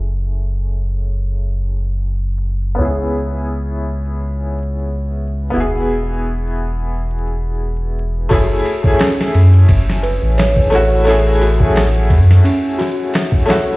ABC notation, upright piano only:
X:1
M:4/4
L:1/16
Q:"Swing 16ths" 1/4=87
K:F#m
V:1 name="Upright piano"
[A,CEG]16 | [B,CEG]16 | [B,EFG]16 | [A,CEG]3 [A,CEG] z8 z2 [A,CEF]2 |
[A,CEG]3 [A,CEG] z8 z2 [A,CEF]2 |]